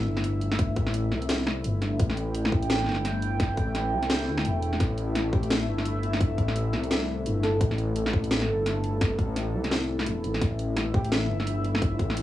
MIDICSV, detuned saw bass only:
0, 0, Header, 1, 2, 480
1, 0, Start_track
1, 0, Key_signature, 0, "minor"
1, 0, Tempo, 350877
1, 808, Time_signature, 4, 2, 24, 8
1, 16724, End_track
2, 0, Start_track
2, 0, Title_t, "Detuned saw bass"
2, 0, Program_c, 0, 39
2, 89, Note_on_c, 0, 31, 88
2, 1047, Note_on_c, 0, 33, 108
2, 1068, Note_off_c, 0, 31, 0
2, 1525, Note_on_c, 0, 36, 98
2, 1546, Note_off_c, 0, 33, 0
2, 2247, Note_on_c, 0, 31, 107
2, 2267, Note_off_c, 0, 36, 0
2, 2715, Note_off_c, 0, 31, 0
2, 2730, Note_on_c, 0, 33, 101
2, 3916, Note_off_c, 0, 33, 0
2, 3930, Note_on_c, 0, 31, 85
2, 4890, Note_on_c, 0, 33, 107
2, 4910, Note_off_c, 0, 31, 0
2, 5372, Note_on_c, 0, 36, 100
2, 5393, Note_off_c, 0, 33, 0
2, 5853, Note_on_c, 0, 38, 84
2, 5873, Note_off_c, 0, 36, 0
2, 6092, Note_on_c, 0, 28, 81
2, 6113, Note_off_c, 0, 38, 0
2, 6558, Note_off_c, 0, 28, 0
2, 6568, Note_on_c, 0, 33, 101
2, 7756, Note_off_c, 0, 33, 0
2, 7773, Note_on_c, 0, 31, 84
2, 8729, Note_on_c, 0, 33, 105
2, 8749, Note_off_c, 0, 31, 0
2, 9216, Note_on_c, 0, 36, 94
2, 9236, Note_off_c, 0, 33, 0
2, 9930, Note_on_c, 0, 31, 102
2, 9951, Note_off_c, 0, 36, 0
2, 10397, Note_off_c, 0, 31, 0
2, 10408, Note_on_c, 0, 33, 104
2, 11596, Note_off_c, 0, 33, 0
2, 11605, Note_on_c, 0, 31, 87
2, 12567, Note_on_c, 0, 33, 108
2, 12588, Note_off_c, 0, 31, 0
2, 13048, Note_on_c, 0, 36, 96
2, 13069, Note_off_c, 0, 33, 0
2, 13771, Note_on_c, 0, 28, 86
2, 13792, Note_off_c, 0, 36, 0
2, 14008, Note_on_c, 0, 33, 100
2, 14029, Note_off_c, 0, 28, 0
2, 14233, Note_off_c, 0, 33, 0
2, 14247, Note_on_c, 0, 33, 103
2, 15435, Note_off_c, 0, 33, 0
2, 15449, Note_on_c, 0, 31, 85
2, 16408, Note_on_c, 0, 33, 109
2, 16428, Note_off_c, 0, 31, 0
2, 16724, Note_off_c, 0, 33, 0
2, 16724, End_track
0, 0, End_of_file